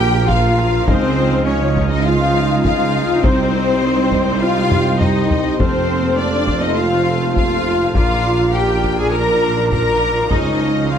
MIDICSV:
0, 0, Header, 1, 11, 480
1, 0, Start_track
1, 0, Tempo, 589971
1, 709, Time_signature, 4, 2, 24, 8
1, 8937, End_track
2, 0, Start_track
2, 0, Title_t, "Flute section"
2, 0, Program_c, 0, 73
2, 0, Note_on_c, 0, 79, 92
2, 225, Note_on_c, 0, 77, 75
2, 231, Note_off_c, 0, 79, 0
2, 706, Note_off_c, 0, 77, 0
2, 710, Note_on_c, 0, 72, 88
2, 1189, Note_off_c, 0, 72, 0
2, 1192, Note_on_c, 0, 73, 64
2, 1542, Note_off_c, 0, 73, 0
2, 1552, Note_on_c, 0, 75, 68
2, 1662, Note_on_c, 0, 77, 80
2, 1670, Note_off_c, 0, 75, 0
2, 1933, Note_off_c, 0, 77, 0
2, 2155, Note_on_c, 0, 77, 83
2, 2621, Note_off_c, 0, 77, 0
2, 2629, Note_on_c, 0, 72, 86
2, 3568, Note_off_c, 0, 72, 0
2, 3581, Note_on_c, 0, 77, 85
2, 4060, Note_on_c, 0, 75, 69
2, 4063, Note_off_c, 0, 77, 0
2, 4540, Note_on_c, 0, 72, 77
2, 4542, Note_off_c, 0, 75, 0
2, 5013, Note_off_c, 0, 72, 0
2, 5030, Note_on_c, 0, 74, 74
2, 5377, Note_on_c, 0, 75, 78
2, 5388, Note_off_c, 0, 74, 0
2, 5499, Note_off_c, 0, 75, 0
2, 5508, Note_on_c, 0, 77, 83
2, 5973, Note_off_c, 0, 77, 0
2, 5983, Note_on_c, 0, 77, 77
2, 6455, Note_off_c, 0, 77, 0
2, 6468, Note_on_c, 0, 77, 74
2, 6937, Note_off_c, 0, 77, 0
2, 6948, Note_on_c, 0, 79, 79
2, 7304, Note_on_c, 0, 80, 80
2, 7307, Note_off_c, 0, 79, 0
2, 7420, Note_on_c, 0, 82, 79
2, 7423, Note_off_c, 0, 80, 0
2, 7703, Note_off_c, 0, 82, 0
2, 7907, Note_on_c, 0, 82, 74
2, 8377, Note_off_c, 0, 82, 0
2, 8380, Note_on_c, 0, 75, 70
2, 8857, Note_on_c, 0, 77, 64
2, 8864, Note_off_c, 0, 75, 0
2, 8937, Note_off_c, 0, 77, 0
2, 8937, End_track
3, 0, Start_track
3, 0, Title_t, "Violin section"
3, 0, Program_c, 1, 48
3, 0, Note_on_c, 1, 79, 97
3, 234, Note_off_c, 1, 79, 0
3, 234, Note_on_c, 1, 77, 75
3, 701, Note_on_c, 1, 72, 89
3, 711, Note_off_c, 1, 77, 0
3, 1175, Note_off_c, 1, 72, 0
3, 1188, Note_on_c, 1, 73, 68
3, 1540, Note_off_c, 1, 73, 0
3, 1543, Note_on_c, 1, 75, 67
3, 1665, Note_off_c, 1, 75, 0
3, 1667, Note_on_c, 1, 77, 78
3, 2128, Note_off_c, 1, 77, 0
3, 2138, Note_on_c, 1, 77, 80
3, 2612, Note_off_c, 1, 77, 0
3, 2627, Note_on_c, 1, 72, 79
3, 3567, Note_off_c, 1, 72, 0
3, 3592, Note_on_c, 1, 77, 86
3, 4059, Note_off_c, 1, 77, 0
3, 4069, Note_on_c, 1, 75, 66
3, 4547, Note_off_c, 1, 75, 0
3, 4553, Note_on_c, 1, 72, 79
3, 5020, Note_off_c, 1, 72, 0
3, 5027, Note_on_c, 1, 74, 83
3, 5383, Note_on_c, 1, 75, 71
3, 5386, Note_off_c, 1, 74, 0
3, 5504, Note_off_c, 1, 75, 0
3, 5504, Note_on_c, 1, 77, 73
3, 5974, Note_off_c, 1, 77, 0
3, 5984, Note_on_c, 1, 77, 75
3, 6455, Note_off_c, 1, 77, 0
3, 6475, Note_on_c, 1, 77, 79
3, 6941, Note_off_c, 1, 77, 0
3, 6959, Note_on_c, 1, 79, 77
3, 7309, Note_on_c, 1, 80, 67
3, 7313, Note_off_c, 1, 79, 0
3, 7425, Note_off_c, 1, 80, 0
3, 7439, Note_on_c, 1, 82, 78
3, 7902, Note_off_c, 1, 82, 0
3, 7912, Note_on_c, 1, 82, 77
3, 8380, Note_off_c, 1, 82, 0
3, 8401, Note_on_c, 1, 75, 70
3, 8867, Note_on_c, 1, 77, 71
3, 8874, Note_off_c, 1, 75, 0
3, 8937, Note_off_c, 1, 77, 0
3, 8937, End_track
4, 0, Start_track
4, 0, Title_t, "Violin section"
4, 0, Program_c, 2, 48
4, 0, Note_on_c, 2, 79, 94
4, 228, Note_off_c, 2, 79, 0
4, 234, Note_on_c, 2, 77, 73
4, 705, Note_on_c, 2, 72, 79
4, 711, Note_off_c, 2, 77, 0
4, 1186, Note_off_c, 2, 72, 0
4, 1192, Note_on_c, 2, 73, 63
4, 1543, Note_off_c, 2, 73, 0
4, 1544, Note_on_c, 2, 75, 72
4, 1663, Note_off_c, 2, 75, 0
4, 1663, Note_on_c, 2, 77, 84
4, 2141, Note_off_c, 2, 77, 0
4, 2150, Note_on_c, 2, 77, 77
4, 2619, Note_off_c, 2, 77, 0
4, 2624, Note_on_c, 2, 72, 82
4, 3577, Note_on_c, 2, 77, 90
4, 3584, Note_off_c, 2, 72, 0
4, 4061, Note_off_c, 2, 77, 0
4, 4065, Note_on_c, 2, 75, 62
4, 4535, Note_off_c, 2, 75, 0
4, 4548, Note_on_c, 2, 72, 75
4, 5026, Note_off_c, 2, 72, 0
4, 5028, Note_on_c, 2, 74, 74
4, 5380, Note_off_c, 2, 74, 0
4, 5384, Note_on_c, 2, 75, 70
4, 5501, Note_on_c, 2, 77, 80
4, 5505, Note_off_c, 2, 75, 0
4, 5979, Note_off_c, 2, 77, 0
4, 5989, Note_on_c, 2, 77, 77
4, 6458, Note_off_c, 2, 77, 0
4, 6466, Note_on_c, 2, 77, 82
4, 6937, Note_off_c, 2, 77, 0
4, 6945, Note_on_c, 2, 79, 75
4, 7306, Note_off_c, 2, 79, 0
4, 7309, Note_on_c, 2, 80, 71
4, 7427, Note_off_c, 2, 80, 0
4, 7436, Note_on_c, 2, 82, 82
4, 7890, Note_off_c, 2, 82, 0
4, 7900, Note_on_c, 2, 82, 80
4, 8374, Note_off_c, 2, 82, 0
4, 8390, Note_on_c, 2, 75, 72
4, 8869, Note_off_c, 2, 75, 0
4, 8870, Note_on_c, 2, 77, 67
4, 8937, Note_off_c, 2, 77, 0
4, 8937, End_track
5, 0, Start_track
5, 0, Title_t, "Pipe organ"
5, 0, Program_c, 3, 19
5, 0, Note_on_c, 3, 65, 84
5, 0, Note_on_c, 3, 70, 78
5, 0, Note_on_c, 3, 77, 88
5, 680, Note_off_c, 3, 77, 0
5, 681, Note_off_c, 3, 65, 0
5, 713, Note_on_c, 3, 75, 72
5, 714, Note_off_c, 3, 70, 0
5, 714, Note_on_c, 3, 63, 67
5, 714, Note_on_c, 3, 68, 71
5, 717, Note_on_c, 3, 77, 70
5, 2598, Note_off_c, 3, 77, 0
5, 2618, Note_on_c, 3, 79, 65
5, 2619, Note_on_c, 3, 67, 70
5, 2621, Note_on_c, 3, 72, 68
5, 2628, Note_off_c, 3, 75, 0
5, 2629, Note_off_c, 3, 68, 0
5, 4541, Note_off_c, 3, 79, 0
5, 4542, Note_off_c, 3, 67, 0
5, 4546, Note_on_c, 3, 69, 69
5, 4547, Note_on_c, 3, 77, 70
5, 4548, Note_off_c, 3, 63, 0
5, 4549, Note_on_c, 3, 65, 74
5, 6463, Note_off_c, 3, 72, 0
5, 6466, Note_off_c, 3, 69, 0
5, 6469, Note_on_c, 3, 70, 68
5, 6471, Note_on_c, 3, 74, 66
5, 8380, Note_off_c, 3, 77, 0
5, 8388, Note_off_c, 3, 65, 0
5, 8388, Note_off_c, 3, 70, 0
5, 8390, Note_off_c, 3, 74, 0
5, 8390, Note_on_c, 3, 73, 59
5, 8392, Note_on_c, 3, 68, 64
5, 8395, Note_on_c, 3, 63, 65
5, 8396, Note_on_c, 3, 77, 63
5, 8937, Note_off_c, 3, 63, 0
5, 8937, Note_off_c, 3, 68, 0
5, 8937, Note_off_c, 3, 73, 0
5, 8937, Note_off_c, 3, 77, 0
5, 8937, End_track
6, 0, Start_track
6, 0, Title_t, "Cello section"
6, 0, Program_c, 4, 48
6, 0, Note_on_c, 4, 67, 99
6, 232, Note_off_c, 4, 67, 0
6, 236, Note_on_c, 4, 65, 84
6, 712, Note_off_c, 4, 65, 0
6, 713, Note_on_c, 4, 60, 98
6, 1188, Note_on_c, 4, 61, 79
6, 1190, Note_off_c, 4, 60, 0
6, 1548, Note_off_c, 4, 61, 0
6, 1555, Note_on_c, 4, 63, 82
6, 1666, Note_on_c, 4, 65, 88
6, 1669, Note_off_c, 4, 63, 0
6, 2139, Note_off_c, 4, 65, 0
6, 2149, Note_on_c, 4, 65, 88
6, 2618, Note_off_c, 4, 65, 0
6, 2628, Note_on_c, 4, 60, 94
6, 3587, Note_off_c, 4, 60, 0
6, 3587, Note_on_c, 4, 65, 99
6, 4066, Note_off_c, 4, 65, 0
6, 4069, Note_on_c, 4, 63, 81
6, 4547, Note_off_c, 4, 63, 0
6, 4548, Note_on_c, 4, 60, 87
6, 5017, Note_off_c, 4, 60, 0
6, 5029, Note_on_c, 4, 62, 77
6, 5387, Note_off_c, 4, 62, 0
6, 5390, Note_on_c, 4, 63, 83
6, 5508, Note_off_c, 4, 63, 0
6, 5508, Note_on_c, 4, 65, 92
6, 5981, Note_off_c, 4, 65, 0
6, 5990, Note_on_c, 4, 65, 90
6, 6459, Note_off_c, 4, 65, 0
6, 6471, Note_on_c, 4, 65, 98
6, 6939, Note_off_c, 4, 65, 0
6, 6947, Note_on_c, 4, 67, 84
6, 7299, Note_off_c, 4, 67, 0
6, 7313, Note_on_c, 4, 68, 82
6, 7427, Note_off_c, 4, 68, 0
6, 7429, Note_on_c, 4, 70, 95
6, 7899, Note_off_c, 4, 70, 0
6, 7908, Note_on_c, 4, 70, 91
6, 8378, Note_off_c, 4, 70, 0
6, 8386, Note_on_c, 4, 63, 85
6, 8857, Note_off_c, 4, 63, 0
6, 8870, Note_on_c, 4, 65, 72
6, 8937, Note_off_c, 4, 65, 0
6, 8937, End_track
7, 0, Start_track
7, 0, Title_t, "French horn section"
7, 0, Program_c, 5, 60
7, 0, Note_on_c, 5, 67, 86
7, 226, Note_off_c, 5, 67, 0
7, 246, Note_on_c, 5, 65, 75
7, 717, Note_off_c, 5, 65, 0
7, 721, Note_on_c, 5, 60, 82
7, 1185, Note_off_c, 5, 60, 0
7, 1197, Note_on_c, 5, 61, 66
7, 1552, Note_off_c, 5, 61, 0
7, 1564, Note_on_c, 5, 63, 74
7, 1676, Note_off_c, 5, 63, 0
7, 1683, Note_on_c, 5, 65, 74
7, 2151, Note_off_c, 5, 65, 0
7, 2161, Note_on_c, 5, 65, 78
7, 2623, Note_on_c, 5, 60, 86
7, 2624, Note_off_c, 5, 65, 0
7, 3584, Note_off_c, 5, 60, 0
7, 3584, Note_on_c, 5, 65, 77
7, 3927, Note_off_c, 5, 65, 0
7, 4065, Note_on_c, 5, 63, 66
7, 4535, Note_off_c, 5, 63, 0
7, 4546, Note_on_c, 5, 60, 76
7, 5026, Note_off_c, 5, 60, 0
7, 5034, Note_on_c, 5, 62, 75
7, 5389, Note_on_c, 5, 63, 70
7, 5390, Note_off_c, 5, 62, 0
7, 5505, Note_off_c, 5, 63, 0
7, 5513, Note_on_c, 5, 65, 73
7, 5985, Note_off_c, 5, 65, 0
7, 5995, Note_on_c, 5, 65, 82
7, 6448, Note_off_c, 5, 65, 0
7, 6458, Note_on_c, 5, 65, 81
7, 6932, Note_off_c, 5, 65, 0
7, 6945, Note_on_c, 5, 67, 73
7, 7306, Note_off_c, 5, 67, 0
7, 7308, Note_on_c, 5, 68, 67
7, 7425, Note_on_c, 5, 70, 70
7, 7427, Note_off_c, 5, 68, 0
7, 7901, Note_off_c, 5, 70, 0
7, 7911, Note_on_c, 5, 70, 75
7, 8379, Note_off_c, 5, 70, 0
7, 8392, Note_on_c, 5, 63, 67
7, 8860, Note_off_c, 5, 63, 0
7, 8860, Note_on_c, 5, 65, 59
7, 8937, Note_off_c, 5, 65, 0
7, 8937, End_track
8, 0, Start_track
8, 0, Title_t, "Viola section"
8, 0, Program_c, 6, 48
8, 0, Note_on_c, 6, 53, 72
8, 0, Note_on_c, 6, 58, 76
8, 679, Note_off_c, 6, 58, 0
8, 710, Note_on_c, 6, 63, 71
8, 2594, Note_off_c, 6, 53, 0
8, 2631, Note_on_c, 6, 55, 68
8, 4513, Note_off_c, 6, 63, 0
8, 4515, Note_off_c, 6, 55, 0
8, 4547, Note_on_c, 6, 57, 69
8, 4549, Note_on_c, 6, 60, 71
8, 6434, Note_off_c, 6, 57, 0
8, 6435, Note_off_c, 6, 60, 0
8, 6469, Note_on_c, 6, 53, 65
8, 6472, Note_on_c, 6, 62, 67
8, 8357, Note_off_c, 6, 62, 0
8, 8388, Note_on_c, 6, 63, 61
8, 8937, Note_off_c, 6, 53, 0
8, 8937, Note_off_c, 6, 63, 0
8, 8937, End_track
9, 0, Start_track
9, 0, Title_t, "Double bass section"
9, 0, Program_c, 7, 48
9, 0, Note_on_c, 7, 34, 77
9, 704, Note_on_c, 7, 37, 75
9, 711, Note_off_c, 7, 34, 0
9, 2591, Note_off_c, 7, 37, 0
9, 2622, Note_on_c, 7, 36, 70
9, 4511, Note_off_c, 7, 36, 0
9, 4544, Note_on_c, 7, 29, 68
9, 6432, Note_off_c, 7, 29, 0
9, 6468, Note_on_c, 7, 34, 75
9, 8384, Note_on_c, 7, 37, 65
9, 8388, Note_off_c, 7, 34, 0
9, 8937, Note_off_c, 7, 37, 0
9, 8937, End_track
10, 0, Start_track
10, 0, Title_t, "Tuba"
10, 0, Program_c, 8, 58
10, 0, Note_on_c, 8, 34, 77
10, 702, Note_off_c, 8, 34, 0
10, 707, Note_on_c, 8, 37, 75
10, 2491, Note_off_c, 8, 37, 0
10, 2629, Note_on_c, 8, 36, 74
10, 4514, Note_off_c, 8, 36, 0
10, 4549, Note_on_c, 8, 29, 71
10, 6472, Note_on_c, 8, 34, 71
10, 6484, Note_off_c, 8, 29, 0
10, 8246, Note_off_c, 8, 34, 0
10, 8385, Note_on_c, 8, 37, 64
10, 8937, Note_off_c, 8, 37, 0
10, 8937, End_track
11, 0, Start_track
11, 0, Title_t, "Taiko and cinematic ensemble drums"
11, 0, Note_on_c, 9, 37, 42
11, 79, Note_off_c, 9, 37, 0
11, 234, Note_on_c, 9, 41, 84
11, 315, Note_off_c, 9, 41, 0
11, 474, Note_on_c, 9, 37, 43
11, 555, Note_off_c, 9, 37, 0
11, 713, Note_on_c, 9, 41, 105
11, 794, Note_off_c, 9, 41, 0
11, 1435, Note_on_c, 9, 41, 75
11, 1517, Note_off_c, 9, 41, 0
11, 2154, Note_on_c, 9, 41, 85
11, 2235, Note_off_c, 9, 41, 0
11, 2634, Note_on_c, 9, 41, 101
11, 2716, Note_off_c, 9, 41, 0
11, 3351, Note_on_c, 9, 41, 74
11, 3433, Note_off_c, 9, 41, 0
11, 3835, Note_on_c, 9, 45, 81
11, 3917, Note_off_c, 9, 45, 0
11, 4075, Note_on_c, 9, 45, 88
11, 4156, Note_off_c, 9, 45, 0
11, 4319, Note_on_c, 9, 43, 86
11, 4400, Note_off_c, 9, 43, 0
11, 4558, Note_on_c, 9, 41, 95
11, 4639, Note_off_c, 9, 41, 0
11, 5274, Note_on_c, 9, 41, 75
11, 5355, Note_off_c, 9, 41, 0
11, 5994, Note_on_c, 9, 41, 75
11, 6075, Note_off_c, 9, 41, 0
11, 6470, Note_on_c, 9, 41, 90
11, 6551, Note_off_c, 9, 41, 0
11, 7192, Note_on_c, 9, 41, 63
11, 7273, Note_off_c, 9, 41, 0
11, 7908, Note_on_c, 9, 41, 75
11, 7989, Note_off_c, 9, 41, 0
11, 8388, Note_on_c, 9, 41, 84
11, 8469, Note_off_c, 9, 41, 0
11, 8937, End_track
0, 0, End_of_file